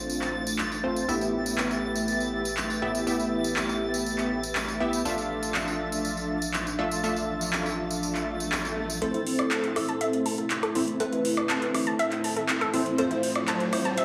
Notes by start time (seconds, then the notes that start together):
Already playing: A1 A2 A3 C4 D4 F4 C5 A6
0.10 tambourine
0.21 clap, tambourine
0.47 tambourine
0.59 clap, tambourine
0.72 tambourine
0.84 A3 C4 F4 C5
0.96 tambourine
1.08 A1 A2 B3 E4 G4 B4 E5, tambourine
1.21 tambourine
1.46 tambourine
1.58 clap, tambourine
1.71 tambourine
1.96 tambourine
2.08 tambourine
2.20 tambourine
2.45 tambourine
2.57 clap, tambourine
2.70 tambourine
2.82 A2 B3 E4 G4 E5
2.95 tambourine
3.07 A2 B3 E4 G4 E5, tambourine
3.20 tambourine
3.44 tambourine
3.56 clap, tambourine
3.69 tambourine
3.94 tambourine
4.06 tambourine
4.18 clap, tambourine
4.43 tambourine
4.55 clap, tambourine
4.68 tambourine
4.80 B3 E4 G4 E5
4.93 tambourine
5.05 A1 F3 A3 D4 F4 A4 E5, tambourine
5.18 tambourine
5.43 tambourine
5.55 clap, tambourine
5.67 tambourine
5.92 tambourine
6.05 tambourine
6.17 tambourine
6.42 tambourine
6.54 clap, tambourine
6.67 tambourine
6.79 A3 D4 F4 A4 E5
6.91 tambourine
7.03 A3 D4 F4 A4 E5, tambourine
7.16 tambourine
7.41 tambourine
7.53 clap, tambourine
7.66 tambourine
7.91 tambourine
8.03 tambourine, swell
8.15 clap, tambourine
8.40 tambourine
8.52 clap, tambourine
8.65 tambourine
8.90 tambourine
9.02 A2 A3 C4 E4 A4 C5, closed hi-hat, riser
9.14 E4, closed hi-hat
9.27 open hi-hat
9.39 D5, high woodblock
9.51 A5, clap, closed hi-hat
9.64 closed hi-hat
9.76 E4 A4, open hi-hat, high woodblock
9.88 A5, closed hi-hat
10.01 E5, closed hi-hat
10.13 closed hi-hat
10.26 A5, open hi-hat
10.38 A4, closed hi-hat
10.50 clap, closed hi-hat
10.63 A4, closed hi-hat, high woodblock
10.75 A2 A3 C4 E4 C5, open hi-hat
10.88 closed hi-hat
11.00 A2 A3 C4 E4 A4 B4, closed hi-hat
11.13 E4, closed hi-hat
11.25 open hi-hat
11.37 D5, high woodblock
11.49 A5, clap, closed hi-hat
11.62 closed hi-hat
11.74 E4, open hi-hat, high woodblock
11.87 A5, closed hi-hat
11.99 E5, closed hi-hat
12.12 clap, closed hi-hat
12.24 A5, open hi-hat
12.36 A4, closed hi-hat
12.49 clap, closed hi-hat
12.61 A4, closed hi-hat
12.74 A2 A3 C4 E4 C5, open hi-hat
12.86 closed hi-hat
12.98 A2 A3 C4 F4 A4 C5, closed hi-hat
13.11 E4, closed hi-hat
13.23 open hi-hat
13.36 D5, high woodblock
13.48 A5, clap, closed hi-hat
13.60 closed hi-hat
13.73 E4 C5, open hi-hat, high woodblock
13.85 A5, closed hi-hat
13.98 E5, closed hi-hat